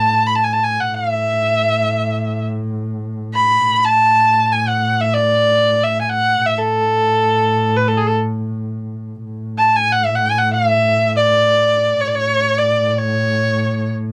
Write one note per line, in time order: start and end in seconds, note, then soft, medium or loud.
0.00 0.88 A2 medium
0.00 0.28 A5 medium
0.26 0.37 B5 medium
0.35 0.45 A5 medium
0.43 0.54 G#5 medium
0.53 0.65 A5 medium
0.63 0.82 G#5 medium
0.80 0.96 F#5 medium
0.88 3.65 A2 medium
0.94 2.46 E5 medium
3.34 3.86 B5 medium
3.66 6.44 A2 medium
3.85 4.54 A5 loud
4.52 4.69 G#5 medium
4.67 5.02 F#5 medium
5.01 5.15 E5 medium
5.14 5.85 D5 medium
5.84 6.01 E5 medium
6.01 6.11 G#5 medium
6.09 6.47 F#5 medium
6.44 9.23 A2 medium
6.44 6.60 E5 medium
6.58 7.78 A4 medium
7.77 7.89 B4 medium
7.87 7.99 A4 medium
7.97 8.08 G#4 medium
8.07 8.15 A4 medium
9.23 12.03 A2 medium
9.58 9.77 A5 medium
9.76 9.93 G#5 medium
9.92 10.07 F#5 medium
10.05 10.17 E5 medium
10.15 10.28 F#5 medium
10.26 10.40 G#5 medium
10.38 10.52 F#5 medium
10.53 11.12 E5 medium
11.16 12.02 D5 medium
12.01 14.12 A2 medium
12.01 12.09 C#5 medium
12.07 12.16 D5 medium
12.15 12.60 C#5 medium
12.58 12.91 D5 medium
12.91 12.99 D5 soft
12.98 13.90 C#5 medium